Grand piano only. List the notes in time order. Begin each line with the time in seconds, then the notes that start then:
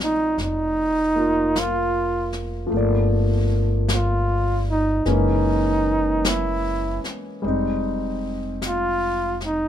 Already playing: F3 A3 C4 D5
1.15 A#3 F4
2.67 F3 A3
2.73 A#3 D5
5.06 E3 G#3 A#3 C#4
7.42 G3 G#3 C4
7.47 D#4